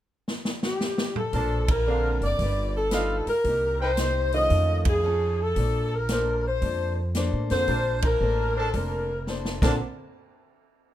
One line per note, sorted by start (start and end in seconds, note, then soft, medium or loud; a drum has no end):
0.28 snare medium
0.45 snare medium
0.63 1.13 G4 medium
0.63 snare medium
0.81 snare medium
0.98 snare medium
1.16 1.69 A4 medium
1.16 mid tom medium
1.33 2.17 A#1 medium
1.33 1.70 A#3 medium
1.33 1.57 D4 medium
1.33 1.71 D4 soft
1.33 1.71 A4 soft
1.33 1.57 A#4 medium
1.33 1.57 C5 medium
1.33 1.72 C5 medium
1.33 1.57 A5 medium
1.33 kick soft
1.33 open hi-hat soft
1.68 2.19 A#4 medium
1.68 kick medium
1.68 ride medium
1.86 2.40 D3 medium
1.86 2.23 A#3 soft
1.86 2.39 A#3 medium
1.86 2.40 C4 medium
1.86 2.10 D4 medium
1.86 2.24 D4 medium
1.86 2.40 A4 medium
1.86 2.24 A4 medium
1.86 2.10 A#4 medium
1.86 2.10 C5 medium
1.86 2.25 C5 medium
1.86 2.10 F5 medium
2.21 2.38 F#1 medium
2.21 2.72 D5 medium
2.21 open hi-hat soft
2.39 3.23 G1 medium
2.39 2.76 G3 soft
2.39 2.77 D#4 soft
2.39 2.77 F4 soft
2.39 2.78 B4 soft
2.39 kick soft
2.39 open hi-hat soft
2.77 3.29 A4 medium
2.91 3.29 G3 medium
2.91 3.30 D#4 medium
2.91 3.16 F4 medium
2.91 3.30 F4 medium
2.91 3.15 B4 medium
2.91 3.30 B4 medium
2.91 3.16 D#5 medium
2.91 3.16 F5 medium
2.91 snare medium
2.91 closed hi-hat soft
3.26 3.77 A#4 medium
3.26 muted upright bass stroke soft
3.26 open hi-hat soft
3.44 4.47 C2 medium
3.44 3.82 C3 soft
3.44 3.83 A#3 soft
3.44 3.83 D#4 soft
3.44 kick soft
3.44 open hi-hat soft
3.48 3.84 G4 medium
3.80 3.92 D#4 medium
3.80 3.92 A#4 medium
3.80 3.92 C5 medium
3.80 4.30 C5 medium
3.80 3.92 G5 medium
3.97 4.35 C3 medium
3.97 4.35 A#3 medium
3.97 4.35 D#4 medium
3.97 4.36 G4 medium
3.97 snare medium
3.97 closed hi-hat soft
4.32 5.01 D#3 medium
4.32 5.01 A3 medium
4.32 5.01 C#4 medium
4.32 5.01 F4 medium
4.32 4.83 D#5 loud
4.32 open hi-hat soft
4.50 5.53 F2 medium
4.50 4.87 F3 soft
4.50 4.88 C#4 soft
4.50 4.89 D#4 soft
4.50 4.89 A4 soft
4.50 kick soft
4.50 open hi-hat soft
4.85 kick medium
4.85 ride medium
4.90 5.41 G#4 medium
5.03 5.41 F3 medium
5.03 5.41 C#4 medium
5.03 5.42 D#4 medium
5.03 5.42 A4 medium
5.42 5.93 A4 medium
5.56 6.58 A#1 medium
5.56 5.94 A#3 soft
5.56 5.95 D4 soft
5.56 5.95 A4 soft
5.56 kick soft
5.56 open hi-hat soft
5.60 5.96 C5 soft
5.95 6.46 A#4 medium
6.09 6.46 A#3 medium
6.09 6.47 D4 medium
6.09 6.47 A4 medium
6.09 6.48 C5 medium
6.09 snare medium
6.09 closed hi-hat soft
6.48 6.96 C5 medium
6.62 7.29 F2 medium
6.62 6.99 A#3 soft
6.62 7.00 D4 soft
6.62 7.00 A4 soft
6.62 7.01 C5 soft
6.62 kick soft
6.62 open hi-hat soft
7.15 7.52 A#3 medium
7.15 7.53 D4 medium
7.15 7.53 A4 medium
7.15 7.54 C5 medium
7.15 snare medium
7.15 closed hi-hat soft
7.33 7.50 A2 medium
7.50 7.67 F2 medium
7.50 7.67 D3 medium
7.50 7.67 A#3 medium
7.50 7.67 C4 medium
7.50 7.67 A4 medium
7.50 8.00 C5 loud
7.50 snare soft
7.50 open hi-hat soft
7.68 8.17 A#1 medium
7.68 8.05 A#3 soft
7.68 8.49 D4 medium
7.68 8.05 D4 soft
7.68 8.06 A4 soft
7.68 8.49 A#4 medium
7.68 8.49 C5 medium
7.68 8.07 C5 soft
7.68 8.49 A5 medium
7.68 kick soft
7.68 open hi-hat soft
8.02 8.57 A#4 loud
8.02 kick medium
8.02 ride medium
8.20 8.70 A1 medium
8.20 8.58 A#3 soft
8.20 8.58 D4 medium
8.20 8.59 A4 medium
8.20 8.59 C5 medium
8.56 8.68 D4 medium
8.56 8.75 A4 medium
8.56 8.68 A#4 medium
8.56 8.68 C5 medium
8.56 8.68 A5 medium
8.72 9.58 F1 medium
8.72 9.10 A#3 soft
8.72 9.11 D4 soft
8.72 9.11 A4 soft
8.72 9.12 C5 soft
8.72 kick soft
8.72 open hi-hat soft
8.76 9.28 A#4 medium
9.27 9.61 A#3 medium
9.27 9.62 D4 medium
9.27 9.63 A4 medium
9.27 9.64 C5 medium
9.27 snare soft
9.45 snare medium
9.62 9.79 A#1 medium
9.62 9.78 D3 medium
9.62 9.76 A#3 medium
9.62 9.79 A#3 medium
9.62 9.79 C4 medium
9.62 9.74 D4 medium
9.62 9.77 D4 medium
9.62 9.79 A4 medium
9.62 9.77 A4 medium
9.62 9.74 A#4 medium
9.62 9.74 C5 medium
9.62 9.78 C5 medium
9.62 9.74 A5 medium
9.62 kick medium
9.62 snare medium
9.62 crash medium